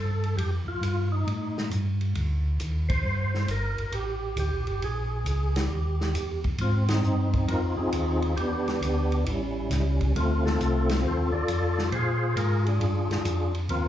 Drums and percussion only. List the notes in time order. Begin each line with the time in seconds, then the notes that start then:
0.24 ride
0.38 ride
0.83 hi-hat pedal, ride
1.28 ride
1.58 snare
1.71 hi-hat pedal, ride
2.01 ride
2.15 ride
2.60 hi-hat pedal, ride
2.90 kick, ride
3.34 snare
3.48 hi-hat pedal, ride
3.78 ride
3.92 ride
4.37 hi-hat pedal, ride
4.67 ride
4.82 ride
5.26 hi-hat pedal, ride
5.56 snare, ride
6.01 snare
6.15 hi-hat pedal, ride
6.44 kick, ride
6.58 ride
6.88 snare, ride
7.04 hi-hat pedal
7.33 kick, ride
7.48 ride
7.92 hi-hat pedal, ride
8.22 ride
8.37 ride
8.68 snare, ride
8.82 hi-hat pedal, ride
9.12 ride
9.26 ride
9.71 snare, hi-hat pedal, ride
10.01 kick, ride
10.16 ride
10.46 snare
10.61 hi-hat pedal, ride
10.89 snare, ride
11.48 hi-hat pedal, ride
11.78 snare
11.92 ride
12.37 hi-hat pedal, ride
12.66 ride
12.81 ride
13.11 snare, ride
13.25 hi-hat pedal, ride
13.55 ride
13.69 ride